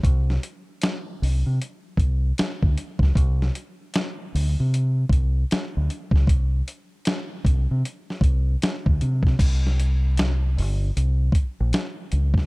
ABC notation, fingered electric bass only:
X:1
M:4/4
L:1/16
Q:"Swing 16ths" 1/4=77
K:Dphr
V:1 name="Fingered electric bass" clef=bass
C,,2 z4 C,, C, z2 C,,2 z D,, z _D,, | C,,2 z4 D,, C,3 C,,2 z D,, z _D,, | C,,2 z4 C,, C, z2 C,,2 z D,, C,2 | C,,6 G,,,2 C,,2 z B,,, z2 _D,,2 |]